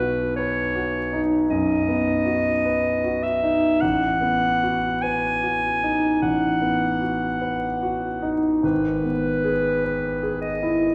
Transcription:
Already playing: grand piano B1 B3, clarinet B4
0.00 grand piano F#4
0.36 grand piano B4, clarinet C#5
0.76 grand piano F#4
1.13 grand piano D#4
1.50 grand piano F#2, clarinet D#5
1.88 grand piano B3
2.26 grand piano F#4
2.65 grand piano B4
3.04 grand piano F#4
3.23 clarinet E5
3.43 grand piano D#4
3.81 grand piano A1, clarinet F#5
4.21 grand piano B3
4.63 grand piano F#4
5.02 grand piano B4, clarinet G#5
5.44 grand piano F#4
5.84 grand piano D#4
6.22 grand piano A1, clarinet F#5
6.62 grand piano B3
7.01 grand piano F#4
7.41 grand piano B4
7.83 grand piano F#4
8.22 grand piano D#4
8.63 grand piano G#1, clarinet B4
9.04 grand piano B3
9.44 grand piano G#4
9.84 grand piano B4
10.23 grand piano G#4
10.41 clarinet D#5
10.63 grand piano E4

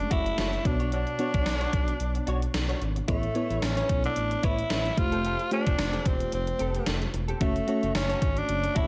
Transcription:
Already playing: fm electric piano G#3 A3 C#4 F#4 G#4, tenor saxophone D4
0.11 analog synth bass F#1, tenor saxophone E4, clean electric guitar F#4 A4 C#5, kick, closed hi-hat
0.26 muted clean electric guitar stroke, closed hi-hat
0.38 analog synth bass F#1, clean electric guitar F#4 A4 C#5, snare, closed hi-hat
0.53 muted clean electric guitar stroke, closed hi-hat
0.65 analog synth bass B1, fm electric piano B2 B3 D4 F#4 C#5, tenor saxophone D4, muted clean electric guitar stroke, kick, closed hi-hat
0.80 clean electric guitar D4 F#4 C#5, closed hi-hat
0.92 clean electric guitar D4 F#4 C#5, tenor saxophone D4, closed hi-hat
1.07 closed hi-hat
1.18 fm electric piano B3 D4 F#4 C#5, clean electric guitar D4 F#4 C#5, closed hi-hat
1.34 analog synth bass B1, clean electric guitar D4 F#4 C#5, kick, closed hi-hat
1.46 analog synth bass B1, muted clean electric guitar stroke, snare, closed hi-hat
1.60 clean electric guitar D4 F#4 C#5, closed hi-hat
1.73 analog synth bass B1, muted clean electric guitar stroke, kick, closed hi-hat
1.88 muted clean electric guitar stroke, closed hi-hat
2.00 analog synth bass B1, closed hi-hat
2.15 muted clean electric guitar stroke, closed hi-hat
2.27 analog synth bass B1, clean electric guitar D4 F#4 C#5, closed hi-hat
2.42 muted clean electric guitar stroke, closed hi-hat
2.54 analog synth bass B1, muted clean electric guitar stroke, snare, closed hi-hat
2.69 clean electric guitar D4 F#4 C#5, closed hi-hat
2.81 analog synth bass G#1, muted clean electric guitar stroke, closed hi-hat
2.96 muted clean electric guitar stroke, closed hi-hat
3.08 analog synth bass A1, fm electric piano A2 B3 E4 A4 C#5, tenor saxophone A3, clean electric guitar E4 B4 C#5, kick, closed hi-hat
3.23 closed hi-hat
3.35 fm electric piano B3 E4 A4 C#5, clean electric guitar E4 B4 C#5, closed hi-hat
3.50 analog synth bass A1, clean electric guitar E4 B4 C#5, closed hi-hat
3.62 analog synth bass A1, tenor saxophone C#4, muted clean electric guitar stroke, snare, closed hi-hat
3.77 clean electric guitar E4 B4 C#5, closed hi-hat
3.89 analog synth bass B1, muted clean electric guitar stroke, kick, closed hi-hat
4.04 tenor saxophone D4, muted clean electric guitar stroke, closed hi-hat
4.16 analog synth bass A1, closed hi-hat
4.31 muted clean electric guitar stroke, closed hi-hat
4.43 analog synth bass A1, clean electric guitar E4 B4 C#5, tenor saxophone E4, kick, closed hi-hat
4.58 muted clean electric guitar stroke, closed hi-hat
4.70 analog synth bass A1, clean electric guitar E4 B4 C#5, snare, closed hi-hat
4.85 muted clean electric guitar stroke, closed hi-hat
4.97 analog synth bass F1, fm electric piano A3 F4 G4 C5, tenor saxophone F4, muted clean electric guitar stroke, kick, closed hi-hat
5.12 clean electric guitar C4 G4 A4, closed hi-hat
5.24 clean electric guitar C4 G4 A4, closed hi-hat
5.39 closed hi-hat
5.51 fm electric piano A3 F4 G4 C5, clean electric guitar C4 G4 A4, tenor saxophone D4, closed hi-hat
5.66 analog synth bass F1, clean electric guitar C4 G4 A4, kick, closed hi-hat
5.79 analog synth bass F1, snare, closed hi-hat
5.93 clean electric guitar C4 G4 A4, closed hi-hat
6.05 analog synth bass E1, tenor saxophone C4, muted clean electric guitar stroke, kick, closed hi-hat
6.20 muted clean electric guitar stroke, closed hi-hat
6.32 analog synth bass F1, tenor saxophone C4, muted clean electric guitar stroke, closed hi-hat
6.47 muted clean electric guitar stroke, closed hi-hat
6.59 analog synth bass F1, clean electric guitar C4 G4 A4, closed hi-hat
6.74 clean electric guitar C4 G4 A4, closed hi-hat
6.86 analog synth bass F1, clean electric guitar C4 G4 A4, snare, closed hi-hat
7.01 muted clean electric guitar stroke, closed hi-hat
7.13 analog synth bass E1, muted clean electric guitar stroke, closed hi-hat
7.28 clean electric guitar C4 G4 A4, closed hi-hat
7.40 analog synth bass F#1, fm electric piano A3 C#4 F#4 C#5, tenor saxophone A3, clean electric guitar F#4 A4 C#5, kick, closed hi-hat
7.56 closed hi-hat
7.67 fm electric piano A3 C#4 F#4 C#5, clean electric guitar F#4 A4 C#5, closed hi-hat
7.82 analog synth bass F#1, clean electric guitar F#4 A4 C#5, closed hi-hat
7.95 analog synth bass F#1, tenor saxophone C#4, muted clean electric guitar stroke, snare, closed hi-hat
8.09 clean electric guitar F#4 A4 C#5, closed hi-hat
8.21 analog synth bass G#1, muted clean electric guitar stroke, kick, closed hi-hat
8.36 tenor saxophone D4, muted clean electric guitar stroke, closed hi-hat
8.48 analog synth bass F#1, closed hi-hat
8.63 muted clean electric guitar stroke, closed hi-hat
8.75 analog synth bass F#1, tenor saxophone E4, clean electric guitar F#4 A4 C#5, kick, closed hi-hat

